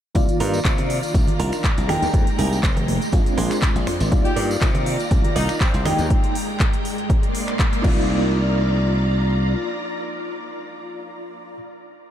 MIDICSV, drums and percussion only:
0, 0, Header, 1, 2, 480
1, 0, Start_track
1, 0, Key_signature, -3, "minor"
1, 0, Tempo, 495868
1, 150, Time_signature, 4, 2, 24, 8
1, 11721, End_track
2, 0, Start_track
2, 0, Title_t, "Drums"
2, 144, Note_on_c, 9, 54, 67
2, 148, Note_on_c, 9, 36, 114
2, 150, Note_on_c, 9, 42, 87
2, 241, Note_off_c, 9, 54, 0
2, 245, Note_off_c, 9, 36, 0
2, 247, Note_off_c, 9, 42, 0
2, 278, Note_on_c, 9, 42, 58
2, 278, Note_on_c, 9, 54, 45
2, 374, Note_off_c, 9, 42, 0
2, 375, Note_off_c, 9, 54, 0
2, 389, Note_on_c, 9, 46, 106
2, 486, Note_off_c, 9, 46, 0
2, 518, Note_on_c, 9, 54, 78
2, 615, Note_off_c, 9, 54, 0
2, 628, Note_on_c, 9, 36, 108
2, 628, Note_on_c, 9, 39, 122
2, 630, Note_on_c, 9, 26, 66
2, 630, Note_on_c, 9, 42, 84
2, 725, Note_off_c, 9, 36, 0
2, 725, Note_off_c, 9, 39, 0
2, 727, Note_off_c, 9, 26, 0
2, 727, Note_off_c, 9, 42, 0
2, 752, Note_on_c, 9, 54, 43
2, 758, Note_on_c, 9, 42, 59
2, 758, Note_on_c, 9, 64, 86
2, 849, Note_off_c, 9, 54, 0
2, 854, Note_off_c, 9, 42, 0
2, 855, Note_off_c, 9, 64, 0
2, 870, Note_on_c, 9, 46, 92
2, 967, Note_off_c, 9, 46, 0
2, 994, Note_on_c, 9, 54, 87
2, 1000, Note_on_c, 9, 42, 39
2, 1091, Note_off_c, 9, 54, 0
2, 1096, Note_off_c, 9, 42, 0
2, 1106, Note_on_c, 9, 54, 76
2, 1108, Note_on_c, 9, 36, 124
2, 1111, Note_on_c, 9, 42, 81
2, 1203, Note_off_c, 9, 54, 0
2, 1205, Note_off_c, 9, 36, 0
2, 1208, Note_off_c, 9, 42, 0
2, 1235, Note_on_c, 9, 64, 89
2, 1239, Note_on_c, 9, 54, 41
2, 1241, Note_on_c, 9, 42, 51
2, 1331, Note_off_c, 9, 64, 0
2, 1336, Note_off_c, 9, 54, 0
2, 1338, Note_off_c, 9, 42, 0
2, 1351, Note_on_c, 9, 46, 117
2, 1448, Note_off_c, 9, 46, 0
2, 1474, Note_on_c, 9, 54, 88
2, 1480, Note_on_c, 9, 26, 64
2, 1480, Note_on_c, 9, 42, 39
2, 1571, Note_off_c, 9, 54, 0
2, 1577, Note_off_c, 9, 26, 0
2, 1577, Note_off_c, 9, 42, 0
2, 1582, Note_on_c, 9, 54, 64
2, 1588, Note_on_c, 9, 36, 106
2, 1590, Note_on_c, 9, 39, 120
2, 1591, Note_on_c, 9, 42, 83
2, 1679, Note_off_c, 9, 54, 0
2, 1684, Note_off_c, 9, 36, 0
2, 1687, Note_off_c, 9, 39, 0
2, 1688, Note_off_c, 9, 42, 0
2, 1717, Note_on_c, 9, 54, 42
2, 1720, Note_on_c, 9, 42, 57
2, 1814, Note_off_c, 9, 54, 0
2, 1817, Note_off_c, 9, 42, 0
2, 1829, Note_on_c, 9, 64, 90
2, 1831, Note_on_c, 9, 26, 77
2, 1831, Note_on_c, 9, 46, 90
2, 1926, Note_off_c, 9, 64, 0
2, 1927, Note_off_c, 9, 26, 0
2, 1927, Note_off_c, 9, 46, 0
2, 1958, Note_on_c, 9, 42, 41
2, 1962, Note_on_c, 9, 54, 80
2, 2055, Note_off_c, 9, 42, 0
2, 2058, Note_off_c, 9, 54, 0
2, 2068, Note_on_c, 9, 36, 122
2, 2070, Note_on_c, 9, 42, 82
2, 2165, Note_off_c, 9, 36, 0
2, 2167, Note_off_c, 9, 42, 0
2, 2197, Note_on_c, 9, 42, 55
2, 2200, Note_on_c, 9, 54, 41
2, 2294, Note_off_c, 9, 42, 0
2, 2296, Note_off_c, 9, 54, 0
2, 2310, Note_on_c, 9, 46, 110
2, 2407, Note_off_c, 9, 46, 0
2, 2444, Note_on_c, 9, 54, 79
2, 2540, Note_off_c, 9, 54, 0
2, 2548, Note_on_c, 9, 36, 112
2, 2549, Note_on_c, 9, 39, 127
2, 2551, Note_on_c, 9, 26, 64
2, 2551, Note_on_c, 9, 42, 81
2, 2645, Note_off_c, 9, 36, 0
2, 2646, Note_off_c, 9, 39, 0
2, 2648, Note_off_c, 9, 26, 0
2, 2648, Note_off_c, 9, 42, 0
2, 2679, Note_on_c, 9, 42, 58
2, 2682, Note_on_c, 9, 64, 81
2, 2686, Note_on_c, 9, 54, 40
2, 2775, Note_off_c, 9, 42, 0
2, 2779, Note_off_c, 9, 64, 0
2, 2782, Note_off_c, 9, 54, 0
2, 2790, Note_on_c, 9, 46, 96
2, 2791, Note_on_c, 9, 63, 91
2, 2887, Note_off_c, 9, 46, 0
2, 2888, Note_off_c, 9, 63, 0
2, 2918, Note_on_c, 9, 42, 39
2, 2923, Note_on_c, 9, 54, 86
2, 3015, Note_off_c, 9, 42, 0
2, 3020, Note_off_c, 9, 54, 0
2, 3022, Note_on_c, 9, 54, 61
2, 3028, Note_on_c, 9, 36, 127
2, 3029, Note_on_c, 9, 42, 81
2, 3119, Note_off_c, 9, 54, 0
2, 3125, Note_off_c, 9, 36, 0
2, 3126, Note_off_c, 9, 42, 0
2, 3159, Note_on_c, 9, 42, 52
2, 3167, Note_on_c, 9, 54, 39
2, 3256, Note_off_c, 9, 42, 0
2, 3264, Note_off_c, 9, 54, 0
2, 3268, Note_on_c, 9, 46, 116
2, 3365, Note_off_c, 9, 46, 0
2, 3395, Note_on_c, 9, 39, 39
2, 3396, Note_on_c, 9, 54, 78
2, 3397, Note_on_c, 9, 26, 65
2, 3397, Note_on_c, 9, 42, 40
2, 3492, Note_off_c, 9, 39, 0
2, 3493, Note_off_c, 9, 54, 0
2, 3494, Note_off_c, 9, 26, 0
2, 3494, Note_off_c, 9, 42, 0
2, 3505, Note_on_c, 9, 39, 119
2, 3507, Note_on_c, 9, 42, 82
2, 3508, Note_on_c, 9, 36, 116
2, 3510, Note_on_c, 9, 54, 67
2, 3602, Note_off_c, 9, 39, 0
2, 3604, Note_off_c, 9, 42, 0
2, 3605, Note_off_c, 9, 36, 0
2, 3607, Note_off_c, 9, 54, 0
2, 3638, Note_on_c, 9, 42, 53
2, 3642, Note_on_c, 9, 54, 35
2, 3734, Note_off_c, 9, 42, 0
2, 3739, Note_off_c, 9, 54, 0
2, 3747, Note_on_c, 9, 26, 80
2, 3747, Note_on_c, 9, 46, 90
2, 3844, Note_off_c, 9, 26, 0
2, 3844, Note_off_c, 9, 46, 0
2, 3875, Note_on_c, 9, 54, 71
2, 3877, Note_on_c, 9, 42, 39
2, 3972, Note_off_c, 9, 54, 0
2, 3974, Note_off_c, 9, 42, 0
2, 3986, Note_on_c, 9, 42, 78
2, 3987, Note_on_c, 9, 36, 127
2, 4083, Note_off_c, 9, 42, 0
2, 4084, Note_off_c, 9, 36, 0
2, 4114, Note_on_c, 9, 54, 37
2, 4115, Note_on_c, 9, 42, 54
2, 4211, Note_off_c, 9, 54, 0
2, 4212, Note_off_c, 9, 42, 0
2, 4226, Note_on_c, 9, 46, 106
2, 4322, Note_off_c, 9, 46, 0
2, 4363, Note_on_c, 9, 54, 90
2, 4460, Note_off_c, 9, 54, 0
2, 4465, Note_on_c, 9, 39, 121
2, 4467, Note_on_c, 9, 26, 65
2, 4467, Note_on_c, 9, 36, 120
2, 4467, Note_on_c, 9, 42, 78
2, 4562, Note_off_c, 9, 39, 0
2, 4564, Note_off_c, 9, 26, 0
2, 4564, Note_off_c, 9, 36, 0
2, 4564, Note_off_c, 9, 42, 0
2, 4594, Note_on_c, 9, 64, 85
2, 4595, Note_on_c, 9, 42, 52
2, 4595, Note_on_c, 9, 54, 37
2, 4691, Note_off_c, 9, 64, 0
2, 4692, Note_off_c, 9, 42, 0
2, 4692, Note_off_c, 9, 54, 0
2, 4707, Note_on_c, 9, 46, 97
2, 4804, Note_off_c, 9, 46, 0
2, 4835, Note_on_c, 9, 42, 36
2, 4843, Note_on_c, 9, 54, 74
2, 4932, Note_off_c, 9, 42, 0
2, 4939, Note_off_c, 9, 54, 0
2, 4946, Note_on_c, 9, 42, 76
2, 4948, Note_on_c, 9, 36, 124
2, 4960, Note_on_c, 9, 54, 69
2, 5043, Note_off_c, 9, 42, 0
2, 5044, Note_off_c, 9, 36, 0
2, 5057, Note_off_c, 9, 54, 0
2, 5077, Note_on_c, 9, 42, 52
2, 5077, Note_on_c, 9, 54, 38
2, 5079, Note_on_c, 9, 64, 94
2, 5174, Note_off_c, 9, 42, 0
2, 5174, Note_off_c, 9, 54, 0
2, 5176, Note_off_c, 9, 64, 0
2, 5187, Note_on_c, 9, 46, 124
2, 5284, Note_off_c, 9, 46, 0
2, 5315, Note_on_c, 9, 26, 63
2, 5315, Note_on_c, 9, 42, 35
2, 5316, Note_on_c, 9, 54, 78
2, 5412, Note_off_c, 9, 26, 0
2, 5412, Note_off_c, 9, 42, 0
2, 5413, Note_off_c, 9, 54, 0
2, 5426, Note_on_c, 9, 39, 125
2, 5428, Note_on_c, 9, 36, 117
2, 5428, Note_on_c, 9, 42, 73
2, 5428, Note_on_c, 9, 54, 71
2, 5523, Note_off_c, 9, 39, 0
2, 5524, Note_off_c, 9, 36, 0
2, 5524, Note_off_c, 9, 42, 0
2, 5525, Note_off_c, 9, 54, 0
2, 5557, Note_on_c, 9, 42, 52
2, 5564, Note_on_c, 9, 54, 38
2, 5653, Note_off_c, 9, 42, 0
2, 5661, Note_off_c, 9, 54, 0
2, 5667, Note_on_c, 9, 64, 96
2, 5668, Note_on_c, 9, 26, 77
2, 5668, Note_on_c, 9, 46, 97
2, 5764, Note_off_c, 9, 64, 0
2, 5765, Note_off_c, 9, 26, 0
2, 5765, Note_off_c, 9, 46, 0
2, 5792, Note_on_c, 9, 54, 89
2, 5797, Note_on_c, 9, 42, 38
2, 5888, Note_off_c, 9, 54, 0
2, 5894, Note_off_c, 9, 42, 0
2, 5908, Note_on_c, 9, 42, 79
2, 5909, Note_on_c, 9, 36, 121
2, 6005, Note_off_c, 9, 36, 0
2, 6005, Note_off_c, 9, 42, 0
2, 6037, Note_on_c, 9, 42, 50
2, 6134, Note_off_c, 9, 42, 0
2, 6150, Note_on_c, 9, 46, 109
2, 6247, Note_off_c, 9, 46, 0
2, 6388, Note_on_c, 9, 39, 116
2, 6389, Note_on_c, 9, 26, 65
2, 6389, Note_on_c, 9, 36, 113
2, 6389, Note_on_c, 9, 42, 75
2, 6485, Note_off_c, 9, 39, 0
2, 6486, Note_off_c, 9, 26, 0
2, 6486, Note_off_c, 9, 36, 0
2, 6486, Note_off_c, 9, 42, 0
2, 6519, Note_on_c, 9, 42, 52
2, 6616, Note_off_c, 9, 42, 0
2, 6631, Note_on_c, 9, 46, 92
2, 6728, Note_off_c, 9, 46, 0
2, 6758, Note_on_c, 9, 42, 36
2, 6855, Note_off_c, 9, 42, 0
2, 6870, Note_on_c, 9, 36, 127
2, 6872, Note_on_c, 9, 42, 72
2, 6967, Note_off_c, 9, 36, 0
2, 6969, Note_off_c, 9, 42, 0
2, 7000, Note_on_c, 9, 42, 48
2, 7097, Note_off_c, 9, 42, 0
2, 7111, Note_on_c, 9, 46, 111
2, 7208, Note_off_c, 9, 46, 0
2, 7239, Note_on_c, 9, 39, 37
2, 7241, Note_on_c, 9, 26, 63
2, 7241, Note_on_c, 9, 42, 35
2, 7336, Note_off_c, 9, 39, 0
2, 7338, Note_off_c, 9, 26, 0
2, 7338, Note_off_c, 9, 42, 0
2, 7351, Note_on_c, 9, 36, 112
2, 7351, Note_on_c, 9, 39, 112
2, 7353, Note_on_c, 9, 42, 77
2, 7447, Note_off_c, 9, 36, 0
2, 7448, Note_off_c, 9, 39, 0
2, 7450, Note_off_c, 9, 42, 0
2, 7481, Note_on_c, 9, 42, 55
2, 7578, Note_off_c, 9, 42, 0
2, 7591, Note_on_c, 9, 36, 113
2, 7594, Note_on_c, 9, 49, 86
2, 7688, Note_off_c, 9, 36, 0
2, 7691, Note_off_c, 9, 49, 0
2, 11721, End_track
0, 0, End_of_file